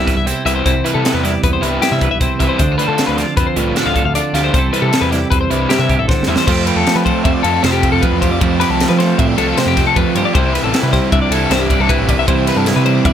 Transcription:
Already playing: G2 E3 G3 B3 C4 E4 E5
0.00 E4
0.07 B4, kick, snare, closed hi-hat
0.16 C2 E5
0.26 C3 E4 C5, closed hi-hat
0.45 C2 E3 G3 C4 E4 B4 E5, closed hi-hat
0.56 C5
0.65 C2 C3 E4 C5, kick, closed hi-hat
0.85 E3 G3 C4 E4 B4, closed hi-hat
0.94 C3 A4
1.04 E3 G3 B3 C4 E4, snare, closed hi-hat
1.14 E2 B4
1.24 G3 E4 D5, snare, closed hi-hat
1.43 E2 B3 B4, kick, closed hi-hat
1.53 C5
1.62 C2 G2 E3 G3 C4 E4 B4, closed hi-hat
1.81 E3 G3 C4 E4 G4, snare, closed hi-hat
1.92 C3 E5
2.01 B4, kick, closed hi-hat
2.11 B1 E5
2.21 C3 E4 C5, kick, closed hi-hat
2.40 C2 E3 G3 C4 E4 B4 E5, kick, closed hi-hat
2.49 C5
2.58 D2 D3 D4 C5, kick, closed hi-hat
2.72 F4
2.78 D3 A3 D4 F4 B4 C5, closed hi-hat
2.88 D3 A4
2.98 D3 A3 C4 D4 F4, snare, closed hi-hat
3.07 D2 B4
3.17 F3 F4 D5, snare, closed hi-hat
3.37 F2 C4 B4, kick, closed hi-hat
3.47 C5
3.56 C2 A2 D3 A3 D4 F4 B4, closed hi-hat
3.76 D3 A3 D4 F4 A4, snare, closed hi-hat
3.86 D2 F4 F5
3.96 A4, kick, closed hi-hat
4.05 D2 F5
4.15 D3 F4 D5, closed hi-hat
4.33 D2 D3 A3 D4 F4 G4 F5, snare, closed hi-hat
4.44 C5
4.54 C2 C3 G3 C4 C5, kick, closed hi-hat
4.58 E4 A4
4.73 E3 G3 C4 E4 A4 B4, closed hi-hat
4.82 C3 A4
4.92 E3 G3 C4 E4, snare, closed hi-hat
5.01 E2 B4
5.11 G3 E4 D5, snare, closed hi-hat
5.30 E2 C4 B4, kick, closed hi-hat
5.41 C5
5.50 C2 G2 E3 G3 C4 E4 B4, closed hi-hat
5.69 E3 G3 C4 E4 G4, snare, closed hi-hat
5.79 C3 E5
5.89 G4, kick, closed hi-hat
5.99 A1 A4 E5
6.08 D3 C5, kick, snare
6.23 snare
6.28 E2 E3 G3 C4 E4 E5
6.36 C5, snare
6.46 F2 F3 A3 C4 F4 C5, kick, crash
6.51 G4
6.66 G4 B4, ride
6.76 E2 A4
6.86 snare, ride
6.95 F3 B4
7.05 A3 C5, kick, ride
7.24 F2 C4 E5, kick, ride
7.34 D5
7.43 F2 F3 A3 C4 F4 A4, ride
7.63 F2 C3 F3 A3 C4 F4 C5, snare, ride
7.72 G4
7.83 C4, kick, ride
7.92 F2 A4
8.02 F3 B4, kick, ride
8.12 E2
8.21 G4 C5, kick, ride
8.31 F2 D5
8.40 F2 F3 A3 C4 F4 C5, kick, ride
8.60 G4 B4, snare, ride
8.69 C2 A4
8.80 snare, ride
8.89 F3 B4
8.99 A3 C5, snare, ride
9.18 A2 C4 E5, kick, ride
9.28 D5
9.37 C2 F3 A3 C4 D4 F4 A4, ride
9.57 C3 F3 A3 C4 F4 C5, snare, ride
9.66 F2 G4
9.77 C4, kick, snare, ride
9.87 A4
9.96 F2 F3 B4, kick, ride
10.16 G2 G4 C5, ride
10.25 D5
10.34 C2 C3 E3 G3 C4 E4 C5, kick, ride
10.54 B4, snare, ride
10.64 A1 A4
10.74 E4, snare, ride
10.83 C3 B4
10.93 G3 C5, kick, snare, ride
11.12 C2 D4 E5, kick, ride
11.22 D5
11.30 C2 C3 E3 G3 C4 E4 A4, ride
11.50 C2 G2 C3 E3 G3 C4 E4 C5, snare, ride
11.61 G4
11.70 D4, kick, ride
11.79 C2 A4
11.89 C3 E4 B4, kick, ride
11.99 A1
12.09 B4 D5, kick, ride
12.18 C2 E5
12.27 C2 C3 E3 G3 C4 E4 C5, kick, ride
12.47 B4, snare, ride
12.56 G2 A4
12.66 E4, snare, ride
12.76 C3 B4
12.86 G3 C5, ride
13.05 E2 D4 E5, kick, ride

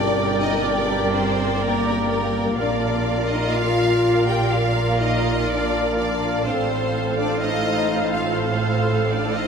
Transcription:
Already playing: G1 G2 A#3 D4 G4 A#4 D5 G5
0.41 D#4 D#5
0.63 D4 D5
1.12 C4 C5
1.61 A#3 A#4
2.10 A#3 A#4
2.57 A#1 A#2 A#3 D4 F4 A#4 D5 F5
3.28 D#4 D#5
3.55 F4 F5
4.27 G4 G5
4.51 F4 F5
4.99 D#4 D#5
5.48 D4 D5
5.97 D4 D5
6.44 A1 A2 C4 F4 A4 C5 F5
7.18 D4 D5
7.40 D#4 D#5
8.14 F4 F5
8.37 C4 C5
9.09 D4 D5
9.33 D#5
9.38 D#4

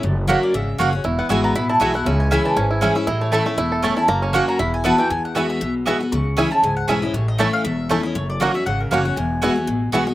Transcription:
0.03 F#1 F#2
0.27 F#3 A#3 C#4 F#4 C#5 E5 F#5
0.43 D5
0.54 G#1 C#3 E5
0.78 F#1 F#3 A#3 C#4 F#4 C#5 F#5
0.93 C#4 F#4
1.04 E1 E2 E4
1.19 B3 F#5
1.29 G#1 E3 G#3 B3 E4 F#4 E5 G#5
1.44 B3 A#5
1.55 A1 B2 E4 B5
1.69 E4 A5
1.80 B1 E3 G#3 B3 E4 F#4 E5 G#5
1.94 B3 E4 F#4 F#5
2.06 C#2 C#3 C#4 E5
2.20 G#5
2.31 E3 G#3 C#4 E4 G#4 E5 G#5 B5
2.45 E3 A5
2.56 G#1 G#2 C#4 G#5
2.71 E4
2.81 E3 G#3 C#4 E4 G#4 E5 G#5
2.95 C#4 E4 E5
3.07 A1 A2 E4 D#5
3.21 A3 C#5
3.32 E3 A3 C#4 E4 A4 C#5 E5 A5
3.46 A3 C#4 E4 E5
3.58 E1 E2 E4
3.72 A4
3.82 E3 A3 C#4 E4 C#5 A5
3.96 C#4 E4 A5
4.08 F#1 F#2 A#3 A#5
4.22 C#4 C#5
4.33 F#3 A#3 C#4 F#4 C#5 F#5
4.48 F#4 A#5
4.59 E1 E2 E4 B5
4.74 G#5
4.84 E3 B3 E4 F#4 B4 F#5 A5
4.98 E3 E4 F#4 G5
5.10 E2 G#5
5.25 F#5
5.35 E3 G#3 B3 E4 F#4 E5 G#5
5.50 E5
5.61 B1 B2
5.86 E3 G#3 B3 E4 F#4 E5 G#5
6.00 B3 F#4
6.12 C#2 C#3 C#6
6.37 E3 G#3 C#4 E4 G#4 E5 G#5
6.51 C#4 E4 A5
6.63 C#2 G#2 G#5
6.77 F#5
6.88 B1 E3 G#3 C#4 E4 G#4 E5 G#5
7.02 C#4 E4 D#5
7.14 A1 A2 C#5
7.28 D#5
7.38 E3 A3 C#4 E4 C#5 E5 A5
7.53 F5
7.65 E1 E2 E5
7.89 E3 A3 C#4 E4 C#5 A5
8.03 C#4 E4 D#5
8.15 F#1 F#2 C#5
8.30 D5
8.40 F#3 A#3 C#4 F#4 C#5 D#5 F#5
8.54 C#4 F#4 E5
8.66 G#1 C#3 F#5
8.80 A#4
8.91 F#1 F#3 A#3 C#4 F#4 C#5 F#5
9.05 C#4 F#4 F#5
9.16 E1 E2 G#5
9.42 E3 G#3 B3 E4 F#4 E5 G#5
9.56 B3 F#4
9.67 A1 B2
9.92 B1 E3 G#3 B3 E4 F#4 E5 G#5
10.07 B3 F#4 D#5

